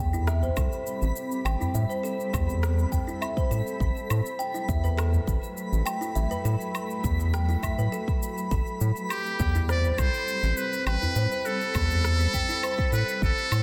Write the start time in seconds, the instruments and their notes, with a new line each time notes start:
Already playing: ambient pad G3 C4 B5, kalimba G5, synth texture B5
0.00 analog synth bass E2
0.13 kalimba E4, udu, shaker
0.27 kalimba E5, cross-stick, shaker
0.43 kalimba C5, udu, shaker
0.57 analog synth bass C2, kalimba A4, kick, low woodblock, shaker
0.72 shaker
0.87 shaker
1.02 analog synth bass A1, shaker
1.16 shaker
1.32 shaker
1.45 analog synth bass A1, ambient pad A4, kalimba G5, low woodblock, shaker
1.60 kalimba E4, udu, shaker
1.74 analog synth bass A2, kalimba E5, shaker
1.90 kalimba C5, shaker
2.03 kalimba A4, shaker
2.20 shaker
2.34 analog synth bass E2, kick, low woodblock, shaker
2.49 udu, shaker
2.63 cross-stick, shaker
2.79 shaker
2.92 kalimba G5, kick, udu, shaker
3.07 kalimba E4, shaker
3.22 kalimba E5, low woodblock, shaker
3.37 kalimba C5, kick, shaker
3.51 analog synth bass A2, kalimba A4, shaker
3.67 shaker
3.80 analog synth bass A1, ambient pad F#3 A3 B5, kick, shaker
3.97 shaker
4.10 analog synth bass A2, low woodblock, shaker
4.26 shaker
4.39 kalimba G5, shaker
4.54 kalimba E4, shaker
4.68 analog synth bass E2, kalimba E5, kick, shaker
4.84 kalimba B4, udu, shaker
4.97 kalimba A4, cross-stick, low woodblock, shaker
5.14 udu, shaker
5.28 analog synth bass A1, kick, shaker
5.43 shaker
5.57 shaker
5.72 analog synth bass A1, shaker
5.86 kalimba G5, low woodblock, shaker
6.01 kalimba E4, shaker
6.15 analog synth bass A1, kalimba E5, shaker
6.31 kalimba B4, udu, shaker
6.45 analog synth bass A2, kalimba A4, shaker
6.61 shaker
6.75 low woodblock, shaker
6.91 shaker
7.04 analog synth bass E2, kick, shaker
7.19 udu, shaker
7.34 kalimba G5, cross-stick, shaker
7.49 kalimba E4, shaker
7.63 kalimba E5, kick, udu, low woodblock, shaker
7.78 analog synth bass A2, kalimba B4, shaker
7.92 kalimba A4, shaker
8.08 kick, shaker
8.23 shaker
8.38 shaker
8.51 analog synth bass A1, ambient pad G3 C4, kalimba A4, kick, shaker
8.67 shaker
8.81 analog synth bass A2, shaker
8.96 shaker
9.10 muted trumpet G4, low woodblock, shaker
9.26 shaker
9.40 analog synth bass E2, kalimba G5, kick, shaker
9.55 kalimba E4, udu, shaker
9.69 kalimba C5, muted trumpet D5, cross-stick, shaker
9.84 kalimba C5, udu, shaker
9.91 muted trumpet D5
9.98 analog synth bass C2, kalimba A4, muted trumpet C5, kick, low woodblock, shaker
10.14 shaker
10.28 shaker
10.43 analog synth bass A1, shaker
10.57 muted trumpet B4, shaker
10.73 shaker
10.86 analog synth bass A1, muted trumpet B4, kalimba G5, low woodblock, shaker
11.02 kalimba E4, udu, shaker
11.16 analog synth bass A2, kalimba C5, shaker
11.32 kalimba C5, shaker
11.46 kalimba A4, muted trumpet A4, shaker
11.61 shaker
11.75 analog synth bass E2, kick, low woodblock, shaker
11.90 udu, shaker
12.04 cross-stick, shaker
12.20 shaker
12.34 kalimba G5, kick, udu, shaker
12.49 kalimba E4, shaker
12.63 kalimba C5, low woodblock, shaker
12.78 kalimba C5, kick, shaker
12.92 analog synth bass A2, kalimba A4, muted trumpet B4, shaker
13.08 shaker
13.21 analog synth bass A1, ambient pad G3 A3 B4, muted trumpet A4, kick, shaker
13.38 shaker
13.52 analog synth bass A2, low woodblock, shaker